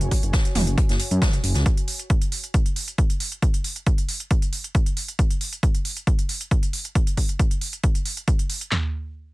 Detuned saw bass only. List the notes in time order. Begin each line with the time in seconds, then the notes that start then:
0.01 F#1
0.23 F#1
0.56 E1
0.67 F#1
0.89 F#1
1.11 F#2
1.44 F#1
1.55 C#2